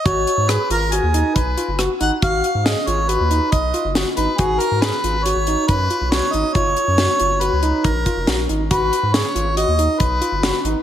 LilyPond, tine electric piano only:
\new Staff \with { instrumentName = "Tine electric piano" } { \time 5/4 \key gis \dorian \tempo 4 = 139 fis'4 gis'8 eis'8 fis'8 dis'4 eis'8 fis'8 dis'8 | fis'4 gis'8 eis'8 fis'8 dis'4 eis'8 fis'8 dis'8 | fis'4 gis'8 eis'8 fis'8 dis'4 eis'8 fis'8 dis'8 | eis'4 fis'8 eis'8 fis'8 dis'4 eis'8 fis'8 dis'8 |
fis'4 gis'8 eis'8 fis'8 dis'4 eis'8 fis'8 dis'8 | }